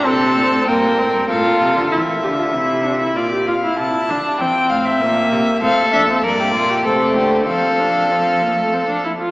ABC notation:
X:1
M:3/4
L:1/16
Q:1/4=96
K:Cdor
V:1 name="Violin"
a4 g4 f4 | =e8 d2 f2 | a4 g2 f =e4- e | [K:F] f2 e2 d4 c4 |
f8- f2 z2 |]
V:2 name="Violin"
A4 B4 A4 | z12 | z12 | [K:F] A4 B G F G A2 G2 |
A8- A2 z2 |]
V:3 name="Viola"
C4 B,2 C2 F4 | =E2 G F E2 D E F G F E | =E2 D2 C4 B,4 | [K:F] C2 D C B,4 A,4 |
C2 D2 C2 B, A, C D E F |]
V:4 name="Cello" clef=bass
C,2 B,, A,, G,, B,, A,, G,, A,, B,, C, D, | =E,2 D,2 C,4 B,,4 | C,2 D,2 =E,2 A,,2 B,,2 C,2 | [K:F] A,,2 F,,2 G,,2 B,,2 C,2 D,2 |
F,8- F,2 z2 |]